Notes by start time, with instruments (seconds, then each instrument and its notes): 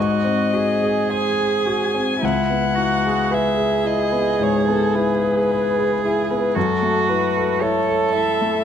Already playing: grand piano G#2, cello F#4, violin D#5
0.24 grand piano C4
0.53 grand piano F#4, cello G#4
0.83 grand piano G#4
1.11 grand piano C5, violin G#5
1.40 grand piano G#4
1.66 grand piano F#4
1.94 grand piano C4
2.21 grand piano C#2, cello E4, violin F#5
2.50 grand piano B3
2.75 grand piano E4, cello F#4
3.06 grand piano G#4
3.31 cello G#4, grand piano B4, violin E5
3.57 grand piano G#4
3.85 grand piano E4, violin D#5
4.12 grand piano B3
4.40 grand piano G#2, violin C#5
4.68 grand piano B3, violin A4
4.95 grand piano E4, violin B4
5.23 grand piano G#4
5.47 cello G#4
5.51 grand piano B4
5.78 grand piano G#4
6.04 grand piano E4, violin G#4
6.31 grand piano B3, violin B4
6.55 grand piano F#2, cello F#4, violin A4
6.82 grand piano A3
7.08 grand piano E4, violin B4
7.36 grand piano A4
7.61 grand piano E4, cello A4, violin C#5
7.89 grand piano A4
8.15 grand piano E4, violin E5
8.42 grand piano A3